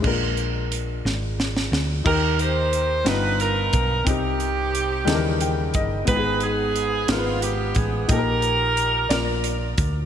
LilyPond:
<<
  \new Staff \with { instrumentName = "Saxophone section" } { \time 6/8 \key ees \major \tempo 4. = 60 << { r2. | bes'8 c''4 b'8 ais'4 | g'2~ g'8 r8 | ces''8 aes'4 f'8 g'8 aes'8 |
bes'2 r4 | } \\ { r2. | <ees' g'>8 <ees' g'>4 <dis' f'>8 <dis' f'>4 | <c' ees'>2~ <c' ees'>8 r8 | <ees' aes'>8 <ces' ees'>4 ces'4. |
<ees' g'>2 r4 | } >> }
  \new Staff \with { instrumentName = "Grand piano" } { \time 6/8 \key ees \major << { r2. | r2. | r2 g''8 ees''8 | r2. |
r2. | } \\ { <aes d' f' bes'>2. | <ees' g' bes'>4. <g b dis' f' ais''>4. | <c' ees' g'>4. <des fes g ees' a' bes'>4. | <ces' ees' g' aes'>4. <aes ces' ees' f' bes' ces''>4. |
<ees' g' a' bes'>4. <f' bes' d''>4. | } >> }
  \new Staff \with { instrumentName = "Grand piano" } { \clef bass \time 6/8 \key ees \major bes,4. r4. | ees4. g,4. | c4. ees4. | aes,4. aes,4. |
bes,4. bes,4. | }
  \new Staff \with { instrumentName = "Fingered electric bass" } { \clef bass \time 6/8 \key ees \major bes,,4. aes,,4 d,8 | ees,4. g,,4 b,,8 | c,4. ees,4 g,,8 | aes,,4. aes,,4 a,,8 |
bes,,4. bes,,4 d,8 | }
  \new DrumStaff \with { instrumentName = "Drums" } \drummode { \time 6/8 <cymc bd>8 hh8 hh8 sn8 sn16 sn16 sn8 | <cymc bd>8 hh8 hh8 <hh sn>8 hh8 <hh bd>8 | <hh bd>8 hh8 hh8 <hh sn>8 hh8 <hh bd>8 | <hh bd>8 hh8 hh8 <hh sn>8 hh8 <hh bd>8 |
<hh bd>8 hh8 hh8 <hh sn>8 hh8 <hh bd>8 | }
>>